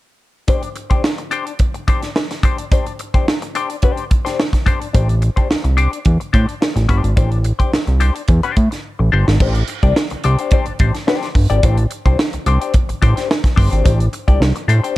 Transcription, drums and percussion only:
0.48 kick, closed hi-hat
0.63 closed hi-hat
0.76 closed hi-hat
0.90 kick, closed hi-hat
1.04 snare
1.18 closed hi-hat
1.31 closed hi-hat
1.47 closed hi-hat
1.59 kick, closed hi-hat
1.74 closed hi-hat
1.88 kick, closed hi-hat
2.03 snare, closed hi-hat
2.16 snare
2.31 snare, closed hi-hat
2.43 kick, closed hi-hat
2.58 closed hi-hat
2.72 kick, closed hi-hat
2.86 closed hi-hat
2.99 closed hi-hat
3.14 kick, closed hi-hat
3.28 snare
3.42 closed hi-hat
3.55 closed hi-hat
3.70 closed hi-hat
3.82 kick, closed hi-hat
3.97 closed hi-hat
4.11 kick, closed hi-hat
4.26 snare, closed hi-hat
4.40 snare
4.53 kick, snare, closed hi-hat
4.66 kick, closed hi-hat
4.82 closed hi-hat
4.94 kick, closed hi-hat
5.09 closed hi-hat
5.22 closed hi-hat
5.37 kick, closed hi-hat
5.51 snare
5.65 closed hi-hat
5.78 closed hi-hat
5.93 closed hi-hat
6.05 kick, closed hi-hat
6.21 closed hi-hat
6.34 kick, closed hi-hat
6.49 closed hi-hat
6.62 snare
6.77 snare, closed hi-hat
6.89 kick, closed hi-hat
7.04 closed hi-hat
7.17 kick, closed hi-hat
7.32 closed hi-hat
7.44 closed hi-hat
7.60 kick, closed hi-hat
7.73 snare
7.87 closed hi-hat
8.01 closed hi-hat
8.16 closed hi-hat
8.28 kick, closed hi-hat
8.43 closed hi-hat
8.57 kick, closed hi-hat
8.72 snare, closed hi-hat
9.28 snare
9.40 kick, crash
9.55 closed hi-hat
9.68 closed hi-hat
9.83 kick, closed hi-hat
9.96 snare
10.10 closed hi-hat
10.24 closed hi-hat
10.39 closed hi-hat
10.51 kick, closed hi-hat
10.66 closed hi-hat
10.79 kick, closed hi-hat
10.95 snare, closed hi-hat
11.08 snare
11.23 snare, closed hi-hat
11.35 kick, open hi-hat
11.50 closed hi-hat
11.63 kick, closed hi-hat
11.77 closed hi-hat
11.91 closed hi-hat
12.06 kick, closed hi-hat
12.19 snare
12.33 closed hi-hat
12.46 closed hi-hat
12.62 closed hi-hat
12.74 kick, closed hi-hat
12.89 closed hi-hat
13.02 kick, closed hi-hat
13.17 snare, closed hi-hat
13.31 snare
13.44 kick, snare, closed hi-hat
13.58 kick, open hi-hat
13.73 closed hi-hat
13.85 kick, closed hi-hat
14.00 closed hi-hat
14.13 closed hi-hat
14.28 kick, closed hi-hat
14.42 snare
14.56 closed hi-hat
14.69 closed hi-hat
14.84 closed hi-hat

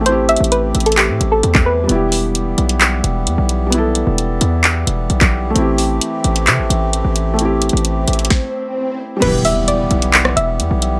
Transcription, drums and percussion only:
0.06 closed hi-hat
0.29 closed hi-hat, open hi-hat
0.36 closed hi-hat
0.44 closed hi-hat
0.52 closed hi-hat
0.75 closed hi-hat
0.80 closed hi-hat
0.86 closed hi-hat
0.92 closed hi-hat
0.97 clap, closed hi-hat
1.21 closed hi-hat
1.43 closed hi-hat
1.55 kick, clap, closed hi-hat
1.89 closed hi-hat
2.12 open hi-hat
2.35 closed hi-hat
2.58 closed hi-hat
2.69 closed hi-hat
2.81 clap, closed hi-hat
3.04 closed hi-hat
3.27 closed hi-hat
3.49 closed hi-hat
3.72 closed hi-hat
3.95 closed hi-hat
4.18 closed hi-hat
4.41 closed hi-hat
4.64 clap, closed hi-hat
4.87 closed hi-hat
5.10 closed hi-hat
5.21 kick, clap, closed hi-hat
5.56 closed hi-hat
5.78 open hi-hat
6.01 closed hi-hat
6.24 closed hi-hat
6.36 closed hi-hat
6.47 clap, closed hi-hat
6.70 closed hi-hat
6.93 closed hi-hat
7.16 closed hi-hat
7.39 closed hi-hat
7.62 closed hi-hat, open hi-hat
7.69 closed hi-hat
7.77 closed hi-hat
7.85 closed hi-hat
8.08 closed hi-hat
8.13 closed hi-hat
8.19 closed hi-hat
8.25 closed hi-hat
8.30 kick, snare
9.22 closed hi-hat, crash
9.45 open hi-hat
9.68 closed hi-hat
9.91 closed hi-hat
10.02 closed hi-hat
10.14 clap, closed hi-hat
10.25 cross-stick
10.37 closed hi-hat
10.60 closed hi-hat
10.82 closed hi-hat

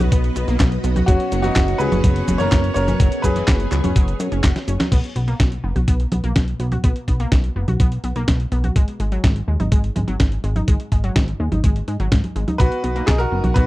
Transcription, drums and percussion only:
0.12 kick, closed hi-hat, cabasa
0.24 closed hi-hat
0.36 closed hi-hat, cabasa
0.48 closed hi-hat, cabasa
0.60 kick, snare, clap, closed hi-hat, cabasa
0.72 closed hi-hat
0.84 closed hi-hat, cabasa
0.96 closed hi-hat, high conga, cabasa
1.08 kick, closed hi-hat, cabasa
1.20 closed hi-hat
1.32 closed hi-hat, cabasa
1.44 closed hi-hat, cabasa
1.56 kick, snare, clap, closed hi-hat, cabasa
1.68 closed hi-hat
1.80 cabasa
1.92 closed hi-hat, high conga, cabasa
2.04 kick, closed hi-hat, cabasa
2.16 closed hi-hat
2.28 closed hi-hat, high conga, cabasa
2.40 closed hi-hat, cabasa
2.52 kick, snare, clap, closed hi-hat, cabasa
2.64 closed hi-hat
2.76 closed hi-hat, cabasa
2.88 closed hi-hat, high conga, cabasa
3.00 kick, closed hi-hat, cabasa
3.12 closed hi-hat, cabasa
3.24 kick, closed hi-hat, cabasa
3.36 closed hi-hat, cabasa
3.48 kick, snare, clap, closed hi-hat, cabasa
3.60 closed hi-hat
3.72 clap, closed hi-hat, cabasa
3.84 closed hi-hat, high conga, cabasa
3.96 kick, closed hi-hat, cabasa
4.08 closed hi-hat, cabasa
4.20 closed hi-hat, cabasa
4.32 closed hi-hat, cabasa
4.44 kick, snare, clap, closed hi-hat, cabasa
4.56 snare, closed hi-hat
4.68 closed hi-hat, cabasa
4.80 snare, closed hi-hat, high conga, cabasa
4.92 kick, closed hi-hat, crash
5.04 closed hi-hat
5.16 closed hi-hat
5.28 closed hi-hat
5.40 kick, snare, closed hi-hat
5.52 closed hi-hat
5.76 closed hi-hat, high conga
5.88 kick, closed hi-hat
6.00 closed hi-hat
6.12 closed hi-hat, high conga
6.24 closed hi-hat
6.36 kick, snare, closed hi-hat
6.48 closed hi-hat
6.60 closed hi-hat
6.72 closed hi-hat, high conga
6.84 kick, closed hi-hat
6.96 closed hi-hat
7.08 kick, closed hi-hat
7.20 closed hi-hat
7.32 kick, snare, closed hi-hat
7.44 closed hi-hat
7.68 closed hi-hat, high conga
7.80 kick, closed hi-hat
7.92 closed hi-hat
8.04 closed hi-hat
8.16 closed hi-hat
8.28 kick, snare, closed hi-hat
8.40 closed hi-hat
8.52 closed hi-hat
8.64 closed hi-hat, high conga
8.76 kick, closed hi-hat
8.88 closed hi-hat
9.00 closed hi-hat
9.12 closed hi-hat
9.24 kick, snare, closed hi-hat
9.36 closed hi-hat
9.60 closed hi-hat, high conga
9.72 kick, closed hi-hat
9.84 closed hi-hat
9.96 closed hi-hat, high conga
10.08 closed hi-hat
10.20 kick, snare, closed hi-hat
10.32 closed hi-hat
10.44 closed hi-hat
10.56 closed hi-hat, high conga
10.68 kick, closed hi-hat
10.80 closed hi-hat
10.92 kick, closed hi-hat
11.04 closed hi-hat
11.16 kick, snare, closed hi-hat
11.28 closed hi-hat
11.52 closed hi-hat, high conga
11.64 kick, closed hi-hat
11.76 closed hi-hat
11.88 closed hi-hat
12.00 closed hi-hat
12.12 kick, snare, closed hi-hat
12.24 closed hi-hat, high conga
12.36 closed hi-hat
12.48 closed hi-hat, high conga
12.60 kick, closed hi-hat
12.72 closed hi-hat
12.84 closed hi-hat
12.96 closed hi-hat
13.08 kick, snare, clap, closed hi-hat
13.20 closed hi-hat
13.44 closed hi-hat, high conga
13.56 kick, closed hi-hat

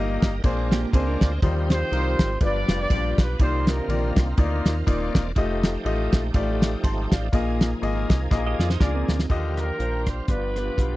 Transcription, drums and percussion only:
0.22 kick, snare, ride
0.44 kick, ride
0.72 snare, ride
0.93 kick, ride
1.21 kick, snare, ride
1.42 kick, ride
1.70 snare, ride
1.93 ride
2.19 kick, snare, ride
2.41 kick, ride
2.68 snare, ride
2.90 kick, ride
3.18 kick, snare, ride
3.39 kick, ride
3.67 snare, ride
3.90 ride
4.16 kick, snare, ride
4.37 kick, ride
4.66 snare, ride
4.87 kick, ride
5.15 kick, snare, ride
5.36 kick, ride
5.63 snare, ride
5.86 ride
6.12 kick, snare, ride
6.34 kick, ride
6.62 snare, ride
6.84 kick, ride
7.12 kick, snare, ride
7.33 kick, ride
7.61 snare, ride
7.83 ride
8.10 kick, snare, ride
8.31 kick, snare
8.59 snare
8.70 snare
8.80 kick, snare
9.08 snare
9.19 snare
9.30 kick, crash
9.57 cross-stick, closed hi-hat
9.80 closed hi-hat
10.06 kick, cross-stick, closed hi-hat
10.28 kick, closed hi-hat
10.56 cross-stick, closed hi-hat
10.78 kick, closed hi-hat

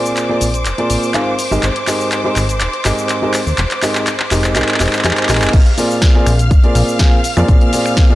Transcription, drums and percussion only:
0.06 shaker
0.17 clap, closed hi-hat, shaker
0.41 open hi-hat, shaker
0.54 closed hi-hat, shaker
0.66 clap, closed hi-hat, shaker
0.78 closed hi-hat
0.90 open hi-hat, shaker
1.03 shaker
1.14 clap, closed hi-hat, shaker
1.39 open hi-hat, shaker
1.52 shaker
1.63 clap, closed hi-hat, shaker
1.76 closed hi-hat
1.87 clap, open hi-hat, shaker
2.01 shaker
2.12 clap, closed hi-hat, shaker
2.36 clap, open hi-hat, shaker
2.49 closed hi-hat, shaker
2.61 clap, closed hi-hat, shaker
2.73 closed hi-hat
2.85 clap, open hi-hat, shaker
2.98 shaker
3.09 clap, closed hi-hat, shaker
3.34 clap, open hi-hat, shaker
3.47 shaker
3.58 clap, closed hi-hat, shaker
3.71 clap, closed hi-hat
3.83 clap, open hi-hat, shaker
3.95 clap, closed hi-hat, shaker
4.07 clap, closed hi-hat, shaker
4.20 clap
4.31 clap, open hi-hat, shaker
4.44 clap, closed hi-hat, shaker
4.56 clap, closed hi-hat, shaker
4.62 clap
4.69 clap, closed hi-hat
4.74 clap
4.80 clap, open hi-hat, shaker
4.87 clap
4.93 clap, shaker
4.99 clap
5.05 clap, closed hi-hat, shaker
5.11 clap
5.17 clap, closed hi-hat
5.23 clap
5.29 clap, open hi-hat, shaker
5.35 clap
5.42 clap, shaker
5.47 clap
5.53 kick, closed hi-hat, crash, shaker
5.66 closed hi-hat
5.78 open hi-hat, shaker
5.91 shaker
6.02 kick, snare, closed hi-hat, shaker
6.26 finger snap, open hi-hat, shaker
6.39 closed hi-hat, shaker
6.51 kick, closed hi-hat, shaker
6.64 closed hi-hat
6.75 open hi-hat, shaker
6.89 shaker
6.99 kick, snare, closed hi-hat, shaker
7.24 open hi-hat, shaker
7.37 finger snap, shaker
7.48 kick, closed hi-hat, shaker
7.61 closed hi-hat
7.73 open hi-hat, shaker
7.86 finger snap, shaker
7.97 kick, snare, closed hi-hat, shaker

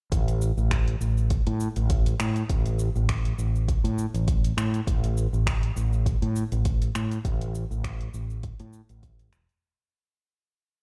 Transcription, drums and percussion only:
0.12 kick, closed hi-hat, cabasa
0.28 closed hi-hat, cabasa
0.41 cabasa
0.58 cabasa
0.71 finger snap, kick, closed hi-hat, cabasa
0.88 closed hi-hat
1.01 cabasa
1.17 cabasa
1.30 kick, closed hi-hat, cabasa
1.47 closed hi-hat
1.60 cabasa
1.76 closed hi-hat, cabasa
1.90 kick, closed hi-hat, cabasa
2.06 closed hi-hat, cabasa
2.20 finger snap, cabasa
2.36 closed hi-hat, cabasa
2.49 kick, closed hi-hat, cabasa
2.66 closed hi-hat, cabasa
2.79 cabasa
2.96 cabasa
3.09 finger snap, kick, closed hi-hat, cabasa
3.25 closed hi-hat
3.39 cabasa
3.55 cabasa
3.68 kick, closed hi-hat, cabasa
3.85 closed hi-hat, cabasa
3.98 cabasa
4.15 closed hi-hat, cabasa
4.28 kick, closed hi-hat, cabasa
4.44 closed hi-hat, cabasa
4.58 finger snap, cabasa
4.74 closed hi-hat, cabasa
4.87 kick, closed hi-hat, cabasa
5.04 closed hi-hat, cabasa
5.17 cabasa
5.34 cabasa
5.47 finger snap, kick, closed hi-hat, cabasa
5.63 closed hi-hat
5.77 cabasa
5.93 cabasa
6.06 kick, closed hi-hat, cabasa
6.22 closed hi-hat
6.36 cabasa
6.52 closed hi-hat, cabasa
6.65 kick, closed hi-hat, cabasa
6.82 closed hi-hat, cabasa
6.95 finger snap, cabasa
7.12 closed hi-hat, cabasa
7.25 kick, closed hi-hat, cabasa
7.41 closed hi-hat, cabasa
7.55 cabasa
7.71 cabasa
7.84 finger snap, kick, closed hi-hat, cabasa
8.01 closed hi-hat
8.14 cabasa
8.30 cabasa
8.43 kick, closed hi-hat, cabasa
8.60 closed hi-hat, cabasa
8.73 cabasa
8.89 closed hi-hat, cabasa
9.03 kick, closed hi-hat, cabasa
9.19 closed hi-hat, cabasa
9.33 finger snap, cabasa
9.49 closed hi-hat, cabasa

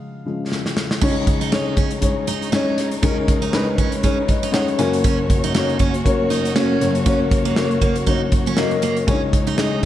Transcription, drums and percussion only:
0.52 snare
0.66 snare
0.77 snare
0.91 snare
1.02 kick, crash
1.27 kick, closed hi-hat
1.42 closed hi-hat
1.53 snare
1.77 kick, closed hi-hat
1.91 closed hi-hat
2.02 kick, closed hi-hat
2.27 closed hi-hat
2.42 closed hi-hat
2.53 snare
2.78 snare, closed hi-hat
2.92 closed hi-hat
3.03 kick, closed hi-hat
3.28 kick, closed hi-hat
3.42 closed hi-hat
3.53 snare
3.78 kick, closed hi-hat
3.92 closed hi-hat
4.03 kick, closed hi-hat
4.28 kick, closed hi-hat
4.43 closed hi-hat
4.54 snare
4.68 closed hi-hat
4.79 snare, closed hi-hat
4.93 closed hi-hat
5.05 kick, closed hi-hat
5.30 kick, closed hi-hat
5.44 closed hi-hat
5.55 snare
5.69 closed hi-hat
5.80 kick, closed hi-hat
5.94 closed hi-hat
6.06 kick, closed hi-hat
6.31 closed hi-hat
6.45 closed hi-hat
6.56 snare
6.81 snare, closed hi-hat
6.95 closed hi-hat
7.06 kick, closed hi-hat
7.31 kick, closed hi-hat
7.45 closed hi-hat
7.56 snare
7.71 closed hi-hat
7.81 kick, closed hi-hat
7.96 closed hi-hat
8.07 kick, closed hi-hat
8.32 kick, closed hi-hat
8.46 closed hi-hat
8.57 snare
8.71 closed hi-hat
8.82 snare, closed hi-hat
8.97 closed hi-hat
9.08 kick, closed hi-hat
9.33 kick, closed hi-hat
9.47 closed hi-hat
9.58 snare

